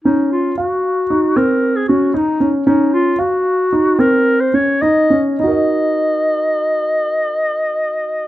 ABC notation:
X:1
M:5/8
L:1/16
Q:1/4=111
K:Ebdor
V:1 name="Clarinet"
E2 F2 G6 | B3 A G2 E3 z | E2 F2 G6 | B3 c d2 e3 z |
e8- e2- | e8- e2 |]
V:2 name="Grand piano"
D4 f4 E2 | C4 D2 E2 D2 | D4 f4 E2 | C4 D2 E2 D2 |
[EGBe]8- [EGBe]2- | [EGBe]8- [EGBe]2 |]